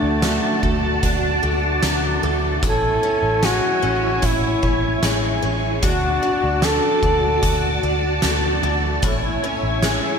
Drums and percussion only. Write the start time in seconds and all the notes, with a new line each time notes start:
0.22 snare, closed hi-hat, tambourine
0.63 kick
1.03 kick, closed hi-hat
1.83 snare, closed hi-hat, tambourine
2.63 kick, closed hi-hat
3.43 snare, closed hi-hat, tambourine
4.23 kick, closed hi-hat
4.63 kick
5.03 snare, closed hi-hat, tambourine
5.83 kick, closed hi-hat
6.62 snare, closed hi-hat, tambourine
7.03 kick
7.43 kick, closed hi-hat
8.22 snare, closed hi-hat, tambourine
9.02 kick, closed hi-hat
9.83 snare, closed hi-hat, tambourine